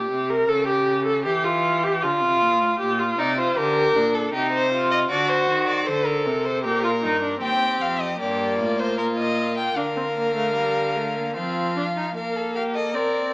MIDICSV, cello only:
0, 0, Header, 1, 2, 480
1, 0, Start_track
1, 0, Key_signature, -2, "minor"
1, 0, Tempo, 769231
1, 305, Time_signature, 3, 2, 24, 8
1, 4628, Tempo, 788436
1, 4629, Key_signature, -2, "major"
1, 8232, End_track
2, 0, Start_track
2, 0, Title_t, "Cello"
2, 0, Program_c, 0, 42
2, 65, Note_on_c, 0, 48, 58
2, 299, Note_off_c, 0, 48, 0
2, 305, Note_on_c, 0, 49, 74
2, 782, Note_on_c, 0, 52, 75
2, 792, Note_off_c, 0, 49, 0
2, 1264, Note_on_c, 0, 50, 63
2, 1273, Note_off_c, 0, 52, 0
2, 1384, Note_on_c, 0, 48, 62
2, 1394, Note_off_c, 0, 50, 0
2, 1504, Note_on_c, 0, 46, 70
2, 1514, Note_off_c, 0, 48, 0
2, 1625, Note_on_c, 0, 45, 61
2, 1634, Note_off_c, 0, 46, 0
2, 1742, Note_off_c, 0, 45, 0
2, 1745, Note_on_c, 0, 46, 74
2, 1981, Note_off_c, 0, 46, 0
2, 1988, Note_on_c, 0, 48, 71
2, 2222, Note_off_c, 0, 48, 0
2, 2227, Note_on_c, 0, 50, 78
2, 2461, Note_off_c, 0, 50, 0
2, 2466, Note_on_c, 0, 46, 62
2, 2700, Note_off_c, 0, 46, 0
2, 2704, Note_on_c, 0, 48, 64
2, 3176, Note_off_c, 0, 48, 0
2, 3185, Note_on_c, 0, 50, 75
2, 3421, Note_off_c, 0, 50, 0
2, 3425, Note_on_c, 0, 51, 69
2, 3664, Note_on_c, 0, 50, 76
2, 3673, Note_off_c, 0, 51, 0
2, 3904, Note_on_c, 0, 48, 66
2, 3914, Note_off_c, 0, 50, 0
2, 4145, Note_on_c, 0, 46, 66
2, 4155, Note_off_c, 0, 48, 0
2, 4387, Note_on_c, 0, 43, 66
2, 4396, Note_off_c, 0, 46, 0
2, 4626, Note_off_c, 0, 43, 0
2, 4630, Note_on_c, 0, 39, 55
2, 4851, Note_off_c, 0, 39, 0
2, 4870, Note_on_c, 0, 41, 55
2, 5101, Note_off_c, 0, 41, 0
2, 5107, Note_on_c, 0, 43, 69
2, 5345, Note_on_c, 0, 45, 62
2, 5355, Note_off_c, 0, 43, 0
2, 5582, Note_on_c, 0, 46, 59
2, 5591, Note_off_c, 0, 45, 0
2, 6053, Note_off_c, 0, 46, 0
2, 6057, Note_on_c, 0, 50, 59
2, 7032, Note_on_c, 0, 53, 54
2, 7041, Note_off_c, 0, 50, 0
2, 7518, Note_off_c, 0, 53, 0
2, 8232, End_track
0, 0, End_of_file